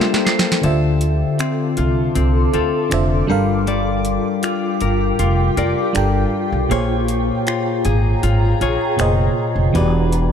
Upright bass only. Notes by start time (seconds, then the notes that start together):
0.64 D2
1.78 C2
2.16 C2
2.54 D2
2.92 F1
3.30 G1
4.81 G1
5.20 F1
5.57 F1
5.95 G1
6.52 B1
6.72 A#1
7.85 G#1
8.23 G#1
8.61 A#1
8.99 F1
9.56 F1
9.75 E1